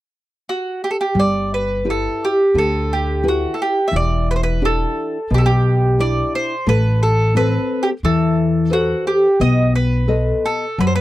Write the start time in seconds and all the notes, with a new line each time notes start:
0.49 F#4
0.84 G4
0.91 A4
1.01 G4
1.15 G1 G3
1.20 D5
1.54 B4
1.85 E4 G4 B4
1.90 A4
2.25 G4
2.54 D2 D3
2.58 A4
2.93 G4
3.24 E4 G4 B4
3.28 F#4
3.54 A4
3.62 G4
3.88 E3 E5
3.93 E1 D5
4.31 B4
4.36 C5
4.43 B4
4.62 D4 E4 G4 A4
5.30 B1 B2
5.34 G4 A4
5.46 G4
5.99 D4 E4 G4 D5
6.35 C5
6.66 A1 A3 B4
7.03 A4
7.35 C4 A4 B4
7.83 G4
8.03 E2 E3 A4
8.70 F#4 A4 B4 C5
9.07 G4
9.40 B1 B3 D#5
9.76 B4
10.08 A4 B4 D#5
10.46 A4
10.78 F#2 F#3 B4
10.87 C5
10.96 B4